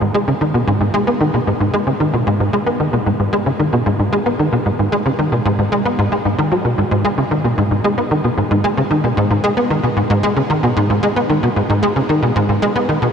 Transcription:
0.01 G#2
0.14 G#3
0.28 C#3
0.41 D#3
0.54 B2
0.67 G#2
0.81 G#2
0.94 G#3
1.07 B3
1.21 D#3
1.34 B2
1.47 G#2
1.60 G#2
1.74 G#3
1.87 C#3
2.00 D#3
2.14 B2
2.27 G#2
2.40 G#2
2.53 G#3
2.66 B3
2.80 D#3
2.93 B2
3.06 G#2
3.20 G#2
3.33 G#3
3.46 C#3
3.60 D#3
3.73 B2
3.86 G#2
4.00 G#2
4.13 G#3
4.26 B3
4.39 D#3
4.53 B2
4.66 G#2
4.79 G#2
4.92 G#3
5.06 C#3
5.19 D#3
5.32 B2
5.45 G#2
5.59 G#2
5.72 G#3
5.86 B3
5.99 G#2
6.12 G#3
6.25 G#2
6.38 D#3
6.52 F#3
6.65 B2
6.78 G#2
6.91 G#2
7.05 G#3
7.18 C#3
7.31 D#3
7.44 B2
7.58 G#2
7.71 G#2
7.84 G#3
7.98 B3
8.11 D#3
8.24 B2
8.38 G#2
8.51 G#2
8.64 G#3
8.77 C#3
8.91 D#3
9.04 B2
9.17 G#2
9.30 G#2
9.44 G#3
9.57 B3
9.70 D#3
9.83 B2
9.97 G#2
10.10 G#2
10.23 G#3
10.36 C#3
10.50 D#3
10.63 B2
10.77 G#2
10.90 G#2
11.03 G#3
11.16 B3
11.29 D#3
11.43 B2
11.56 G#2
11.70 G#2
11.83 G#3
11.96 C#3
12.09 D#3
12.22 B2
12.36 G#2
12.49 G#2
12.62 G#3
12.76 B3
12.89 D#3
13.02 B2

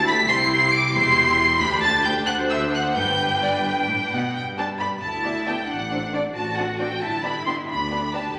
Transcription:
Already playing: D2 E4 G4
0.06 B5 B6
0.28 C2 E4 G4 C6 C7
0.51 C6 C7
0.72 D6 D7
0.94 E1 E2 E4 G4 C6 C7
1.60 D2 D4 G4 B5 B6
1.82 A5 A6
2.04 G5 G6
2.27 D2 D4 C5 F#5 F#6
2.50 E5 E6
2.72 F#5 F#6
2.95 G1 G2 D4 B4 G5 G6
3.43 D5
3.65 G2 G5
3.89 A2
4.12 B2 F#5
4.35 G2 G5
4.58 B3 D4 G4 D5 A5
4.80 B3 D4 G4 D5 B5
5.02 D2 E4 A5
5.24 B3 D4 G4 D5
5.47 B3 D4 G4 D5 G5
5.69 A1 D4 F#5
5.91 C4 D4 D5
6.13 C4 D4 D5
6.35 A1 F#4 A5
6.57 C4 D4 D5 F#5
6.79 C4 D4 D5 G5
7.01 G1 E4 A5
7.23 B3 D4 G4 D5 B5
7.46 B3 D4 G4 D5 C6
7.69 D2 D4 B5
7.91 B3 D4 G4 D5
8.13 B3 D4 G4 D5 A5
8.35 B1 G4

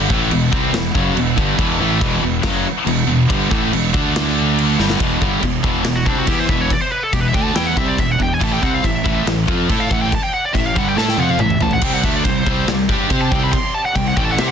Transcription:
Already playing: G3 E4 B4 F#5
0.10 A1 A2 E3 A3, kick
0.30 E1 E2 B2, crash
0.52 C2 C3 G3 C4, kick
0.73 E1 E2 B2, snare, crash
0.94 F#1 F#2 C#3 F#3, kick
1.15 E1 E2 B2, crash
1.36 G1 G2 D3 G3, kick
1.58 E1 E2 B2 E3, kick, crash
1.80 A1 A2 E3 A3
2.00 E1 E2 B2 E3, kick, crash
2.22 E1 E2 B2
2.42 F#1 F#2 C#3 F#3, kick, snare, crash
2.86 E1 E2 B2, crash
3.07 E1 E2 B2
3.29 G1 G2 D3 G3, kick, crash
3.50 A1 A2 E3 A3, kick
3.72 E1 E2 B2, crash
3.93 D2 D3 A3 D4 A4 E5, kick
4.16 snare, crash
4.58 crash
4.77 G1 G2 D3 G3 E4 B4 F#5, snare
4.90 snare
4.99 E1 E2 B2 E3, kick, china
5.20 G1 G2 D3 G3, kick
5.42 E1 E2 B2, kick, china
5.63 E1 E2 B2 E3, kick
5.84 E1 E2 B2, snare, china
5.96 F#4
6.05 C2 C3 G3 C4 D4, kick
6.18 F#4
6.27 E2 E3 B3 E4 G4, kick, china
6.39 C5
6.48 E1 E2 B2 E3 E5, kick
6.61 C#5
6.70 D5, kick, china
6.82 C5
6.92 B4
7.03 A4
7.13 E1 E2 B2 G4, kick, china
7.20 B4
7.28 E5
7.33 D2 D3 A3 D4 G5, kick
7.44 A5
7.55 E2 E3 B3 E4 G5, snare, china
7.66 F#5
7.77 C2 C3 G3 C4 E5, kick
7.88 D5
7.98 E1 E2 B2 E5, kick, china
8.11 F#5
8.19 E1 E2 B2 G5, kick
8.33 G#5
8.40 A1 A2 E3 A3 A5, kick, china
8.53 G5
8.62 C2 C3 G3 C4 F#5, kick
8.74 F5
8.84 A1 A2 E3 E5, kick, china
9.04 A1 A2 E3 A3, kick
9.26 A1 A2 E3, snare, china
9.48 F2 F3 C4 F4, kick
9.69 A2 A3 E4 A4, kick, china
9.80 F5
9.90 A1 A2 E3 A3 F#5, kick
10.02 G5
10.12 A5, kick, china
10.23 G5
10.34 F#5
10.45 D5
10.54 A1 A2 E3 E5, kick, china
10.66 F5
10.76 G1 G2 D3 G3 F#5, kick
10.88 G5
10.96 A2 A3 E4 A4 A5, snare
11.08 G5, snare
11.17 F2 F3 C4 F4 F#5, high tom
11.29 F5, high tom
11.39 A1 A2 E3 E5, mid tom
11.50 mid tom
11.61 A1 A2 E3 A5, floor tom
11.71 F#5, floor tom
11.81 C2 C3 G3 C4 G4 D5 G5, kick, china, splash, crash
11.94 F#5
12.03 D2 D3 A3 D4 E5, kick
12.16 D5
12.24 C2 C3 G3 C5, kick, china
12.46 C2 C3 G3 C4, kick
12.68 C2 C3 G3, snare, china
12.89 G2 G3 D4 G4, kick
13.10 C3 C4 G4 C5, kick, china
13.21 A5
13.31 C2 C3 G3 C4 G5, kick
13.43 B5
13.53 C6, kick, china
13.74 A5
13.85 F#5
13.95 C2 C3 G3 G5, kick, china
14.08 F#5
14.16 A1 A2 E3 A3 G5, kick
14.25 A5
14.32 F#5
14.38 C3 C4 G4 C5 E5, snare, china
14.47 F#5

